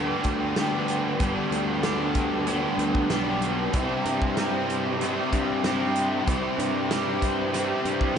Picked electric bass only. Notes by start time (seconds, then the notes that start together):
Already playing: D2
0.24 D2
0.56 D2
1.21 G1
1.51 D2
2.78 D2
3.11 B1
3.74 C2
4.06 G2
5.32 G2
5.64 G2
6.27 C2
6.58 G2
7.85 G2